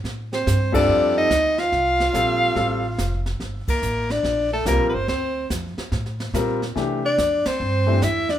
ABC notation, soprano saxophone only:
X:1
M:4/4
L:1/16
Q:"Swing" 1/4=143
K:F
V:1 name="Soprano saxophone"
z2 c4 d4 _e4 f2- | f12- f2 z2 | z2 B4 d4 A2 B3/2 =B/2 c2 | c4 z12 |
z2 d4 c6 e2 d2 |]